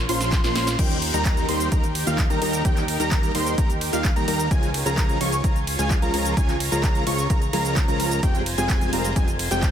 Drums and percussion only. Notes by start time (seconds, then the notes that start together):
0.09 open hi-hat, ride
0.21 snare, closed hi-hat, cabasa
0.32 kick, snare, clap, closed hi-hat, cabasa
0.44 snare, closed hi-hat, cabasa
0.56 snare, open hi-hat, ride
0.67 snare, closed hi-hat, cabasa
0.79 kick, closed hi-hat, crash, cabasa
0.91 closed hi-hat, cabasa
1.02 open hi-hat, ride
1.14 closed hi-hat, cabasa
1.25 kick, clap, closed hi-hat, cabasa
1.37 closed hi-hat, cabasa
1.49 open hi-hat, ride
1.60 closed hi-hat, cabasa
1.72 kick, closed hi-hat, cabasa
1.84 closed hi-hat, cabasa
1.95 open hi-hat, ride
2.07 closed hi-hat, cabasa
2.18 kick, clap, closed hi-hat, cabasa
2.30 closed hi-hat, cabasa
2.42 open hi-hat, ride
2.53 closed hi-hat, cabasa
2.65 kick, closed hi-hat, cabasa
2.77 clap, closed hi-hat, cabasa
2.88 open hi-hat, ride
3.00 closed hi-hat, cabasa
3.12 kick, clap, closed hi-hat, cabasa
3.23 closed hi-hat, cabasa
3.35 open hi-hat, ride
3.46 closed hi-hat, cabasa
3.58 kick, closed hi-hat, cabasa
3.70 closed hi-hat, cabasa
3.81 open hi-hat, ride
3.93 closed hi-hat, cabasa
4.05 kick, clap, closed hi-hat, cabasa
4.16 closed hi-hat, cabasa
4.28 open hi-hat, ride
4.39 closed hi-hat, cabasa
4.51 kick, closed hi-hat, cabasa
4.63 closed hi-hat, cabasa
4.74 open hi-hat, ride
4.86 closed hi-hat, cabasa
4.98 kick, clap, closed hi-hat, cabasa
5.09 closed hi-hat, cabasa
5.21 open hi-hat, ride
5.32 closed hi-hat, cabasa
5.44 kick, closed hi-hat, cabasa
5.56 closed hi-hat, cabasa
5.67 open hi-hat, ride
5.79 closed hi-hat, cabasa
5.91 kick, clap, closed hi-hat, cabasa
6.02 closed hi-hat, cabasa
6.14 open hi-hat, ride
6.25 closed hi-hat, cabasa
6.37 kick, closed hi-hat, cabasa
6.49 clap, closed hi-hat, cabasa
6.60 open hi-hat, ride
6.72 closed hi-hat, cabasa
6.84 kick, clap, closed hi-hat, cabasa
6.95 closed hi-hat, cabasa
7.07 open hi-hat, ride
7.18 closed hi-hat, cabasa
7.30 kick, closed hi-hat, cabasa
7.42 closed hi-hat, cabasa
7.53 open hi-hat, ride
7.65 closed hi-hat, cabasa
7.76 kick, clap, closed hi-hat, cabasa
7.88 closed hi-hat, cabasa
8.00 open hi-hat, ride
8.11 closed hi-hat, cabasa
8.23 kick, closed hi-hat, cabasa
8.35 closed hi-hat, cabasa
8.46 open hi-hat, ride
8.58 closed hi-hat, cabasa
8.70 kick, clap, closed hi-hat, cabasa
8.81 closed hi-hat, cabasa
8.93 open hi-hat, ride
9.04 closed hi-hat, cabasa
9.16 kick, closed hi-hat, cabasa
9.28 closed hi-hat, cabasa
9.39 open hi-hat, ride
9.51 closed hi-hat, cabasa
9.63 kick, clap, closed hi-hat, cabasa